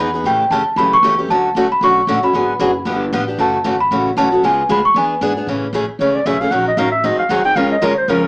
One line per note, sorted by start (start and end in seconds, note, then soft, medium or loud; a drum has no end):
0.00 0.23 E2 medium
0.00 0.10 G#4 medium
0.00 0.27 B5 loud
0.14 0.25 B3 soft
0.14 0.25 D#4 medium
0.14 0.25 G#4 medium
0.24 0.50 A2 medium
0.24 0.43 C#3 medium
0.24 0.43 E3 medium
0.24 0.44 A3 medium
0.24 0.44 C#4 medium
0.24 0.44 G4 medium
0.24 0.50 G5 loud
0.50 0.64 G2 medium
0.50 0.62 C#3 medium
0.50 0.62 E3 medium
0.50 0.62 A3 medium
0.50 0.62 C#4 medium
0.50 0.62 G4 medium
0.50 0.78 A5 medium
0.64 muted upright bass stroke soft
0.76 1.02 F#2 medium
0.76 0.96 C#3 medium
0.76 0.96 E3 medium
0.76 0.96 A3 medium
0.76 0.96 C#4 medium
0.76 0.96 G4 medium
0.76 0.93 B5 medium
0.93 1.17 C#6 medium
1.03 1.28 E2 medium
1.03 1.14 C#3 medium
1.03 1.14 E3 medium
1.03 1.14 A3 medium
1.03 1.14 C#4 medium
1.03 1.14 G4 medium
1.19 1.29 A3 soft
1.19 1.30 C#4 soft
1.19 1.29 G4 medium
1.29 1.54 D2 medium
1.29 1.48 D3 medium
1.29 1.48 F#3 medium
1.29 1.48 A3 medium
1.29 1.48 C#4 medium
1.29 1.49 F#4 medium
1.29 1.68 A5 medium
1.55 1.80 C#2 medium
1.55 1.66 D3 medium
1.55 1.66 F#3 medium
1.55 1.66 A3 medium
1.55 1.66 C#4 medium
1.55 1.67 F#4 medium
1.72 1.82 B5 medium
1.81 2.07 B1 medium
1.81 2.00 D3 medium
1.81 2.00 F#3 medium
1.81 2.00 A3 medium
1.81 2.00 C#4 medium
1.81 2.01 F#4 medium
1.81 2.21 C#6 medium
2.07 2.21 A1 medium
2.07 2.18 D3 medium
2.07 2.18 F#3 medium
2.07 2.18 A3 medium
2.07 2.19 C#4 medium
2.07 2.19 F#4 medium
2.22 2.34 A3 soft
2.22 2.34 C#4 medium
2.22 2.34 F#4 medium
2.22 2.98 B5 medium
2.22 muted upright bass stroke soft
2.33 2.59 G#1 medium
2.33 2.52 D3 medium
2.33 2.52 F#3 medium
2.33 2.53 B3 medium
2.33 2.53 F#4 medium
2.33 2.53 G#4 medium
2.59 2.85 F#1 medium
2.59 2.70 D3 medium
2.59 2.70 F#3 medium
2.59 2.70 B3 medium
2.59 2.70 F#4 medium
2.59 2.71 G#4 medium
2.85 3.11 G1 medium
2.85 3.04 D3 medium
2.85 3.04 F3 medium
2.85 3.05 B3 medium
2.85 3.04 D4 medium
2.85 3.05 G4 medium
3.13 3.38 A1 medium
3.13 3.23 D3 medium
3.13 3.23 F3 medium
3.13 3.23 B3 medium
3.13 3.23 D4 medium
3.13 3.23 G4 medium
3.28 3.39 B3 soft
3.28 3.39 D4 soft
3.28 3.38 G4 medium
3.38 3.64 F#1 medium
3.38 3.57 C#3 medium
3.38 3.57 E3 medium
3.38 3.57 A3 medium
3.38 3.57 C#4 medium
3.38 3.57 F#4 medium
3.38 3.78 A5 medium
3.64 3.90 G#1 medium
3.64 3.75 C#3 medium
3.64 3.75 E3 medium
3.64 3.75 A3 medium
3.64 3.75 C#4 medium
3.64 3.75 F#4 medium
3.80 4.04 B5 medium
3.91 4.16 A1 medium
3.91 4.09 C#3 medium
3.91 4.09 E3 medium
3.91 4.09 A3 medium
3.91 4.10 C#4 medium
3.91 4.10 F#4 medium
4.17 4.42 B1 medium
4.17 4.27 C#3 medium
4.17 4.27 E3 medium
4.17 4.27 A3 medium
4.17 4.28 C#4 medium
4.17 4.28 F#4 medium
4.17 4.42 A5 medium
4.32 4.44 A3 soft
4.32 4.43 C#4 medium
4.32 4.43 F#4 medium
4.43 4.69 C#2 medium
4.43 4.62 C#3 medium
4.43 4.62 G#3 medium
4.43 4.62 B3 medium
4.43 4.62 F4 medium
4.43 4.62 G#4 medium
4.43 4.71 G#5 medium
4.69 4.94 D2 medium
4.69 4.79 C#3 medium
4.69 4.80 G#3 medium
4.69 4.80 B3 medium
4.69 4.80 F4 medium
4.69 4.80 G#4 medium
4.69 4.84 B5 medium
4.85 4.90 C#6 medium
4.94 5.20 E2 medium
4.94 5.14 E3 medium
4.94 5.14 B3 medium
4.94 5.14 D4 medium
4.94 5.14 G#4 medium
4.94 5.35 G#5 medium
5.21 5.46 G#2 medium
5.21 5.32 E3 medium
5.21 5.32 B3 medium
5.21 5.32 D4 medium
5.21 5.32 G#4 medium
5.36 5.48 B3 medium
5.36 5.48 D4 soft
5.36 5.47 G#4 medium
5.47 5.72 A2 medium
5.47 5.66 C#3 medium
5.47 5.66 E3 medium
5.47 5.66 A3 medium
5.47 5.66 C#4 medium
5.47 5.67 G#4 medium
5.73 5.87 A1 medium
5.73 5.84 C#3 medium
5.73 5.84 E3 medium
5.73 5.84 A3 medium
5.73 5.84 C#4 medium
5.73 5.84 G#4 medium
5.88 muted upright bass stroke soft
5.99 6.25 C#2 medium
5.99 6.18 C#3 medium
5.99 6.18 E3 medium
5.99 6.19 A3 medium
5.99 6.19 C#4 medium
5.99 6.19 G#4 medium
5.99 6.16 C#5 medium
6.15 6.27 D5 medium
6.26 6.50 B1 medium
6.26 6.36 C#3 medium
6.26 6.36 E3 medium
6.26 6.36 A3 medium
6.26 6.36 C#4 loud
6.26 6.37 G#4 medium
6.26 6.42 E5 medium
6.41 6.52 A3 soft
6.41 6.51 C#4 medium
6.41 6.52 G#4 medium
6.41 6.53 F5 loud
6.51 6.76 A#1 medium
6.51 6.70 D#3 medium
6.51 6.70 F#3 medium
6.51 6.70 C#4 medium
6.51 6.70 D#4 medium
6.51 6.70 A#4 medium
6.51 6.67 F#5 medium
6.68 6.80 D#5 medium
6.77 7.03 A1 medium
6.77 6.88 D#3 medium
6.77 6.88 F#3 medium
6.77 6.88 C#4 medium
6.77 6.88 D#4 medium
6.77 6.89 A#4 medium
6.77 6.91 F5 medium
6.92 7.07 E5 medium
7.04 7.18 G#1 medium
7.04 7.22 D#3 medium
7.04 7.22 F#3 medium
7.04 7.22 C4 medium
7.04 7.22 D#4 medium
7.04 7.22 G#4 medium
7.04 7.18 D#5 medium
7.19 7.32 F5 medium
7.19 muted upright bass stroke soft
7.29 7.55 C2 medium
7.29 7.40 D#3 medium
7.29 7.41 F#3 medium
7.29 7.41 C4 medium
7.29 7.41 D#4 medium
7.29 7.41 G#4 medium
7.29 7.45 F#5 medium
7.44 7.56 C4 soft
7.44 7.56 D#4 soft
7.44 7.56 G#4 medium
7.44 7.57 G5 loud
7.56 7.81 C#2 medium
7.56 7.74 C#3 medium
7.56 7.75 F3 medium
7.56 7.75 G#3 medium
7.56 7.75 C#4 medium
7.56 7.75 F4 medium
7.56 7.75 A#4 medium
7.56 7.71 F5 medium
7.72 7.86 D#5 medium
7.81 8.07 D#2 medium
7.81 7.92 C#3 medium
7.81 7.92 F3 medium
7.81 7.93 G#3 medium
7.81 7.92 C#4 medium
7.81 7.93 F4 medium
7.81 7.93 A#4 loud
7.81 7.97 C#5 medium
7.98 8.11 C5 medium
8.08 8.28 F2 medium
8.08 8.27 C#3 medium
8.08 8.27 F3 medium
8.08 8.27 G#3 medium
8.08 8.27 C#4 medium
8.08 8.27 F4 medium
8.08 8.24 A#4 medium
8.08 8.27 A#4 medium
8.24 8.28 A4 medium